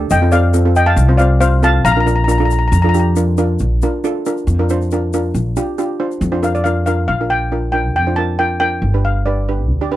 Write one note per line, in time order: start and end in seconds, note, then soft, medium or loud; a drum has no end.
0.10 0.94 F2 loud
0.10 0.31 D#5 medium
0.10 0.34 G5 medium
0.10 shaker loud
0.22 0.29 C4 medium
0.22 0.28 F4 medium
0.22 0.29 A4 medium
0.32 0.47 C4 medium
0.32 0.47 F4 medium
0.32 0.47 A4 medium
0.32 0.73 D5 medium
0.32 0.78 F5 medium
0.32 shaker medium
0.54 0.61 C4 medium
0.54 0.61 F4 medium
0.54 0.61 A4 medium
0.54 shaker loud
0.65 0.92 C4 medium
0.65 0.92 F4 medium
0.65 0.92 A4 medium
0.76 0.87 D#5 medium
0.76 0.88 G5 medium
0.76 shaker medium
0.86 1.17 F5 medium
0.86 1.17 A5 medium
0.96 1.81 C2 loud
0.96 shaker medium
1.08 1.16 C4 medium
1.08 1.15 F4 medium
1.08 1.16 C5 medium
1.17 1.34 C4 medium
1.17 1.33 F4 medium
1.17 1.34 C5 medium
1.17 1.39 D5 medium
1.17 1.39 F5 medium
1.17 shaker medium
1.41 1.55 C4 medium
1.41 1.55 F4 medium
1.41 1.62 C5 medium
1.41 1.55 C5 medium
1.41 1.63 F5 medium
1.41 shaker medium
1.63 1.83 C4 medium
1.63 1.83 F4 medium
1.63 1.83 A4 medium
1.63 1.84 F5 medium
1.63 1.86 A5 loud
1.63 shaker medium
1.85 2.68 A#1 loud
1.85 1.93 F5 medium
1.85 1.90 A#5 loud
1.85 shaker medium
1.92 1.99 A#5 medium
1.97 2.03 D4 medium
1.97 2.03 F4 medium
1.97 2.03 A#4 medium
1.97 2.06 A#5 medium
2.06 2.20 D4 medium
2.06 2.21 F4 medium
2.06 2.20 A#4 medium
2.06 2.14 A#5 medium
2.06 shaker medium
2.16 2.23 A#5 medium
2.24 2.35 D4 medium
2.24 2.35 F4 medium
2.24 2.30 A#5 medium
2.28 2.36 A#4 medium
2.28 2.37 A#5 medium
2.28 shaker medium
2.38 2.66 D4 medium
2.38 2.66 F4 medium
2.38 2.66 A4 medium
2.38 2.44 A#5 medium
2.45 2.52 A#5 medium
2.51 2.58 A#5 medium
2.51 shaker medium
2.59 2.66 A#5 medium
2.68 2.72 A#5 medium
2.72 3.56 F2 loud
2.72 2.81 A#5 medium
2.72 shaker medium
2.82 2.90 D4 medium
2.82 2.91 F4 medium
2.82 2.90 A4 medium
2.82 2.88 A#5 medium
2.89 2.97 A#5 medium
2.94 3.08 D4 medium
2.94 3.08 F4 medium
2.94 3.08 G4 medium
2.94 shaker medium
3.00 3.06 A#5 medium
3.16 3.30 D4 medium
3.16 3.30 F4 medium
3.16 3.30 A#4 medium
3.16 shaker medium
3.37 3.58 D4 medium
3.37 3.58 F4 medium
3.37 3.58 A#4 medium
3.37 shaker medium
3.59 3.81 A#1 medium
3.59 shaker medium
3.82 3.96 D4 medium
3.82 3.96 F4 medium
3.82 3.96 A#4 medium
3.82 shaker medium
4.04 4.17 D4 medium
4.04 4.17 F4 medium
4.04 4.18 A4 medium
4.04 shaker medium
4.26 4.46 D4 medium
4.26 4.46 F4 medium
4.26 4.46 A#4 medium
4.26 shaker medium
4.37 shaker soft
4.47 5.30 F2 medium
4.47 shaker medium
4.59 4.65 D4 medium
4.59 4.65 F4 medium
4.59 4.65 A#4 medium
4.69 4.83 D4 medium
4.69 4.83 F4 medium
4.69 4.83 C5 medium
4.69 shaker medium
4.81 shaker soft
4.91 5.05 D4 medium
4.91 5.05 F4 medium
4.91 5.05 A#4 medium
4.91 shaker medium
5.13 5.40 D4 medium
5.13 5.40 F4 medium
5.13 5.40 A#4 medium
5.13 shaker medium
5.34 5.55 A#1 medium
5.34 shaker medium
5.56 5.70 D4 medium
5.56 5.70 F4 medium
5.56 5.70 G4 medium
5.56 shaker medium
5.78 5.92 D4 medium
5.78 5.92 F4 medium
5.78 5.92 G4 medium
5.78 shaker medium
6.00 6.20 D4 medium
6.00 6.20 F4 medium
6.00 6.20 C5 medium
6.11 shaker soft
6.21 7.05 F2 loud
6.21 shaker medium
6.32 6.39 D4 medium
6.32 6.39 F4 medium
6.32 6.39 C5 medium
6.43 6.57 D4 medium
6.43 6.57 F4 medium
6.43 6.57 A#4 medium
6.43 6.55 F5 medium
6.43 shaker medium
6.55 6.66 D5 medium
6.55 shaker soft
6.64 6.79 D4 medium
6.64 6.79 F4 medium
6.64 6.79 A#4 medium
6.64 6.85 F5 medium
6.64 shaker medium
6.86 7.09 D4 medium
6.86 7.09 F4 medium
6.86 7.09 A#4 medium
6.86 7.07 F5 medium
6.86 shaker medium
7.08 7.95 A#1 medium
7.08 7.31 F5 medium
7.21 7.40 D4 medium
7.21 7.40 F4 medium
7.21 7.40 A#4 medium
7.30 7.71 G5 medium
7.52 7.66 D4 medium
7.52 7.66 F4 medium
7.52 7.66 A#4 medium
7.72 7.94 D4 medium
7.72 7.93 F4 medium
7.72 7.94 A#4 medium
7.72 7.93 G5 medium
7.95 8.79 F2 medium
7.95 8.19 G5 medium
8.07 8.13 D4 medium
8.07 8.14 F4 medium
8.07 8.14 C5 medium
8.16 8.32 D4 medium
8.16 8.32 F4 medium
8.16 8.32 A#4 medium
8.16 8.37 A5 medium
8.39 8.53 D4 medium
8.39 8.53 F4 medium
8.39 8.53 A#4 medium
8.39 8.59 G5 medium
8.60 8.81 D4 medium
8.60 8.81 F4 medium
8.60 8.81 A#4 medium
8.60 9.06 G5 medium
8.82 9.70 G1 medium
8.94 9.14 D4 medium
8.94 9.14 G4 medium
8.94 9.14 B4 medium
9.05 9.27 F5 medium
9.26 9.40 D4 medium
9.26 9.40 G4 medium
9.26 9.40 B4 medium
9.26 9.67 D5 medium
9.49 9.68 D4 medium
9.49 9.69 G4 medium
9.49 9.68 B4 medium
9.70 9.96 D2 medium
9.81 9.88 D4 medium
9.81 9.88 G4 medium
9.81 9.88 D5 medium
9.91 9.96 D4 medium
9.91 9.96 G4 medium
9.91 9.96 B4 medium